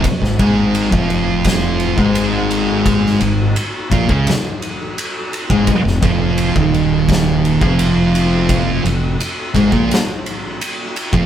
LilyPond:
<<
  \new Staff \with { instrumentName = "Distorted electric guitar" } { \clef bass \time 4/4 \key f \minor \tempo 4 = 85 r16 aes,16 <aes, aes>8. <f, f>4. <aes, aes>4~ <aes, aes>16~ | <aes, aes>8 aes,8 r8 <bes, bes>16 <des des'>16 r4. r16 <aes, aes>16 | r16 f,16 <f, f>8. <ees, ees>4. <f, f>4~ <f, f>16~ | <f, f>8 f,8 r8 <aes, aes>16 <bes, bes>16 r4. r16 <f, f>16 | }
  \new Staff \with { instrumentName = "Distorted electric guitar" } { \clef bass \time 4/4 \key f \minor r16 aes,16 <aes, aes>8. <f, f>4. <aes, aes>4~ <aes, aes>16~ | <aes, aes>8 aes,8 r8 <bes, bes>16 <des des'>16 r4. r16 <aes, aes>16 | r16 f,16 <f, f>8. <ees, ees>4. <f, f>4~ <f, f>16~ | <f, f>8 f,8 r8 <aes, aes>16 <bes, bes>16 r4. r16 <f, f>16 | }
  \new Staff \with { instrumentName = "Fingered electric bass" } { \clef bass \time 4/4 \key f \minor r16 aes,,16 aes,,8. f,,4. aes,,4~ aes,,16~ | aes,,8 aes,,8 r8 bes,,16 des,16 r4. r16 aes,,16 | r16 f,,16 f,,8. ees,,4. f,,4~ f,,16~ | f,,8 f,,8 r8 aes,,16 bes,,16 r4. r16 f,,16 | }
  \new DrumStaff \with { instrumentName = "Drums" } \drummode { \time 4/4 <bd cymr>16 sn16 <bd cymr>8 cymr16 bd16 cymr8 <bd cymr sn>8 cymr16 bd16 cymr8 cymr8 | <bd cymr>16 sn16 cymr8 cymr8 <bd cymr>16 bd16 <cymr sn>8 cymr8 cymr8 cymr16 bd16 | <bd cymr>16 sn16 <bd cymr>8 cymr16 bd16 cymr8 <bd cymr sn>8 cymr16 bd16 cymr8 cymr8 | <bd cymr>8 cymr8 cymr8 <bd cymr>16 bd16 <cymr sn>8 cymr8 cymr8 cymr16 bd16 | }
>>